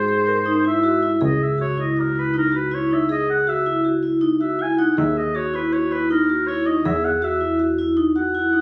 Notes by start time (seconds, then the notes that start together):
Already playing: G#2 C5
0.08 G#4
0.27 A#4
0.46 D#4
0.65 E4 E5
0.83 F#4
1.03 E4
1.21 C#2 G#4
1.25 D#5
1.43 E5
1.58 F#4 C#5
1.78 E4 D#5
1.97 F#4 A#4
2.16 E4 B4
2.34 D#4 A#4
2.52 F#4 B4
2.71 E4 C#5
2.91 D#4 E5
3.09 G#4 D#5
3.30 F#5
3.47 F#4 E5
3.66 E4
3.85 F#4
4.03 E4
4.21 D#4
4.41 F#4 E5
4.59 E4 G#5
4.78 D#4 F#5
4.97 D#2 G#4 E5
5.17 D#5
5.35 F#4 C#5
5.54 E4 B4
5.73 F#4 C#5
5.91 E4 B4
6.10 D#4 A#4
6.29 F#4
6.47 E4 C#5
6.66 D#4 D#5
6.85 E2 G#4 E5
7.05 F#5
7.22 F#4 E5
7.41 E4
7.59 F#4
7.78 E4
7.97 D#4
8.16 F#4 F#5
8.35 E4
8.53 D#4